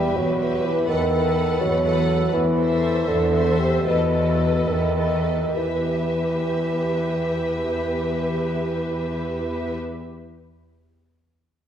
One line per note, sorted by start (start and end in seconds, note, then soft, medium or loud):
0.00 0.18 G3 medium
0.00 0.38 G4 soft
0.00 0.39 B4 soft
0.00 0.38 E5 soft
0.16 0.80 E2 soft
0.16 0.67 F#3 soft
0.40 0.88 G4 soft
0.40 0.88 B4 soft
0.40 0.88 E5 soft
0.65 0.89 E3 medium
0.88 1.52 E2 soft
0.88 1.60 D#3 medium
0.88 1.12 A4 soft
0.88 1.11 B4 soft
0.88 1.11 F#5 soft
1.12 1.83 A4 soft
1.12 1.83 B4 soft
1.12 1.83 F#5 soft
1.61 2.25 E2 soft
1.61 2.32 F#3 soft
1.84 2.32 A4 soft
1.84 2.32 B4 soft
1.84 2.32 F#5 soft
2.33 2.99 E2 soft
2.33 3.09 E3 medium
2.58 3.31 A4 soft
2.58 3.31 C5 soft
2.58 3.31 E5 soft
3.08 3.76 E2 soft
3.08 3.59 D3 soft
3.33 3.84 A4 soft
3.33 3.84 C5 soft
3.33 3.84 E5 soft
3.59 3.87 C3 medium
3.85 4.58 E2 soft
3.85 4.70 B2 medium
3.85 4.11 A4 soft
3.85 4.11 B4 soft
3.85 4.10 D#5 soft
4.11 4.95 A4 soft
4.11 4.95 B4 soft
4.11 4.95 D#5 soft
4.69 5.47 E2 soft
4.69 5.56 D#3 soft
4.96 5.55 A4 soft
4.96 5.56 B4 soft
4.96 5.55 D#5 soft
5.56 9.78 E2 soft
5.56 9.78 E3 soft
5.56 9.77 G4 soft
5.56 9.78 B4 soft
5.56 9.77 E5 soft